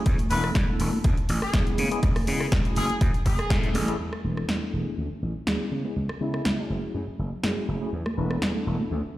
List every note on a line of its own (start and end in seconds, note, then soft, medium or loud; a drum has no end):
0.06 0.16 E2 medium
0.06 kick loud
0.06 closed hi-hat medium
0.18 closed hi-hat medium
0.18 high conga medium
0.30 0.49 E1 medium
0.30 0.65 A3 medium
0.30 0.65 B3 medium
0.30 0.65 D4 medium
0.30 0.65 E4 medium
0.30 0.66 A4 medium
0.30 0.48 B4 loud
0.30 open hi-hat loud
0.30 shaker loud
0.44 cross-stick medium
0.44 shaker medium
0.55 0.65 E2 loud
0.55 kick loud
0.55 snare loud
0.55 closed hi-hat medium
0.55 high conga medium
0.55 shaker soft
0.68 1.02 A3 medium
0.68 1.02 B3 medium
0.68 1.02 D4 medium
0.68 1.02 E4 medium
0.68 1.02 A4 medium
0.80 0.89 E1 loud
0.80 open hi-hat loud
0.80 shaker medium
0.93 high conga medium
0.93 shaker medium
1.04 1.14 D2 medium
1.04 1.13 A3 medium
1.04 1.13 C#4 medium
1.04 1.14 D4 medium
1.04 1.14 F#4 medium
1.04 1.14 A4 medium
1.04 kick loud
1.04 closed hi-hat medium
1.04 shaker soft
1.17 muted slap bass stroke soft
1.17 closed hi-hat soft
1.29 1.39 A1 medium
1.29 open hi-hat loud
1.29 high conga medium
1.29 shaker medium
1.42 1.59 G#4 medium
1.42 muted slap bass stroke soft
1.42 cross-stick medium
1.42 shaker soft
1.53 1.63 D2 loud
1.53 1.88 G#3 medium
1.53 1.88 B3 medium
1.53 1.88 C#4 medium
1.53 1.88 E4 medium
1.53 1.88 G#4 loud
1.53 kick loud
1.53 snare loud
1.53 closed hi-hat medium
1.67 closed hi-hat soft
1.78 1.88 C#3 loud
1.78 open hi-hat loud
1.78 high conga medium
1.78 shaker medium
1.91 1.99 G#3 medium
1.91 1.99 B3 medium
1.91 1.99 C#4 medium
1.91 1.99 E4 medium
1.91 1.99 G#4 loud
1.91 closed hi-hat medium
1.91 shaker medium
2.03 2.12 C#2 loud
2.03 kick loud
2.03 closed hi-hat medium
2.16 cross-stick medium
2.16 open hi-hat medium
2.16 high conga medium
2.16 low conga medium
2.27 2.46 C#3 medium
2.27 2.62 G#3 medium
2.27 2.62 B3 medium
2.27 2.62 C#4 medium
2.27 2.62 E4 medium
2.27 2.62 G#4 medium
2.27 open hi-hat loud
2.27 shaker medium
2.40 cross-stick medium
2.40 shaker medium
2.51 2.61 C#2 loud
2.51 kick loud
2.51 snare loud
2.51 closed hi-hat medium
2.51 high conga medium
2.51 shaker soft
2.65 2.98 A3 medium
2.65 2.98 C#4 medium
2.65 2.98 E4 medium
2.65 2.99 F#4 medium
2.65 2.99 G#4 medium
2.65 closed hi-hat soft
2.75 2.86 F#1 loud
2.75 2.94 G#4 medium
2.75 open hi-hat loud
2.75 shaker medium
2.90 closed hi-hat soft
2.90 high conga medium
2.90 shaker soft
3.01 3.11 F#2 medium
3.01 3.10 A3 medium
3.01 3.10 C#4 medium
3.01 3.10 E4 medium
3.01 3.10 F#4 medium
3.01 3.10 G#4 loud
3.01 kick loud
3.01 closed hi-hat medium
3.01 shaker soft
3.14 muted slap bass stroke soft
3.14 closed hi-hat soft
3.25 3.35 F#1 loud
3.25 3.56 G#4 medium
3.25 kick medium
3.25 open hi-hat loud
3.25 high conga medium
3.25 shaker medium
3.39 muted slap bass stroke soft
3.39 cross-stick medium
3.39 closed hi-hat soft
3.39 shaker medium
3.50 3.68 A2 loud
3.50 3.85 A3 medium
3.50 3.85 C#4 medium
3.50 3.85 E4 medium
3.50 3.85 G#4 medium
3.50 3.85 A4 loud
3.50 kick loud
3.50 snare loud
3.50 closed hi-hat medium
3.64 closed hi-hat soft
3.74 3.93 A1 medium
3.74 open hi-hat loud
3.74 high conga loud
3.74 low conga medium
3.74 shaker medium
3.88 3.96 A3 loud
3.88 3.96 C#4 medium
3.88 3.96 E4 medium
3.88 3.96 G#4 medium
3.88 3.96 A4 loud
3.88 closed hi-hat medium
3.88 shaker soft
4.00 4.09 E2 medium
4.13 cross-stick medium
4.24 4.42 E1 medium
4.24 4.59 A3 medium
4.24 4.59 B3 medium
4.24 4.59 D4 medium
4.24 4.59 E4 medium
4.24 4.59 A4 medium
4.24 4.41 B4 medium
4.37 cross-stick medium
4.49 4.58 E2 medium
4.49 snare loud
4.62 4.95 A3 medium
4.62 4.95 B3 medium
4.62 4.95 D4 medium
4.62 4.95 E4 medium
4.62 4.95 A4 medium
4.73 4.83 E1 medium
4.73 4.91 G#4 medium
4.98 5.07 D2 medium
4.98 5.07 A3 medium
4.98 5.07 C#4 medium
4.98 5.07 D4 medium
4.98 5.07 F#4 medium
4.98 5.07 A4 medium
5.11 muted slap bass stroke soft
5.22 5.32 A1 medium
5.46 5.56 D2 medium
5.46 5.81 G#3 medium
5.46 5.82 B3 medium
5.46 5.82 C#4 medium
5.46 5.82 E4 medium
5.46 5.82 G#4 medium
5.46 snare loud
5.72 5.81 C#3 medium
5.84 5.92 G#3 medium
5.84 5.92 B3 medium
5.84 5.93 C#4 medium
5.84 5.93 E4 medium
5.84 5.93 G#4 loud
5.96 6.06 C#2 medium
6.09 muted slap bass stroke soft
6.09 cross-stick medium
6.20 6.39 C#3 medium
6.20 6.55 G#3 medium
6.20 6.55 B3 medium
6.20 6.55 C#4 medium
6.20 6.75 E4 medium
6.20 6.56 E4 medium
6.20 6.56 G#4 medium
6.34 cross-stick medium
6.45 6.55 C#2 medium
6.45 snare loud
6.58 6.92 A3 medium
6.58 6.92 C#4 medium
6.58 6.92 E4 medium
6.58 6.92 F#4 medium
6.58 6.92 G#4 medium
6.70 6.79 F#1 medium
6.94 7.04 F#2 medium
6.94 7.03 A3 medium
6.94 7.03 C#4 medium
6.94 7.04 E4 medium
6.94 7.04 F#4 medium
6.94 7.04 G#4 medium
7.08 muted slap bass stroke soft
7.19 7.29 F#1 medium
7.32 muted slap bass stroke soft
7.43 7.53 F#2 loud
7.43 7.78 A3 medium
7.43 7.78 C#4 medium
7.43 7.78 E4 medium
7.43 7.78 F#4 medium
7.43 7.79 G#4 loud
7.43 snare loud
7.68 7.78 F#1 loud
7.81 7.89 A3 medium
7.81 7.89 C#4 medium
7.81 7.89 E4 medium
7.81 7.89 F#4 medium
7.81 7.89 G#4 loud
7.93 8.02 E2 medium
8.06 cross-stick medium
8.06 high conga medium
8.17 8.36 E1 medium
8.17 8.52 A3 medium
8.17 8.52 B3 medium
8.17 8.52 D4 medium
8.17 8.52 E4 medium
8.17 8.52 A4 medium
8.17 8.35 B4 medium
8.31 cross-stick medium
8.31 shaker soft
8.42 8.52 E2 loud
8.42 snare loud
8.42 high conga medium
8.42 shaker soft
8.55 8.88 A3 medium
8.55 8.88 B3 medium
8.55 8.89 D4 medium
8.55 8.89 E4 medium
8.55 8.89 A4 medium
8.67 8.76 E1 medium
8.80 high conga medium
8.80 shaker soft
8.91 9.01 D2 medium
8.91 9.00 A3 medium
8.91 9.00 C#4 medium
8.91 9.00 D4 medium
8.91 9.00 F#4 medium
8.91 9.00 A4 medium
8.91 shaker soft
9.05 muted slap bass stroke soft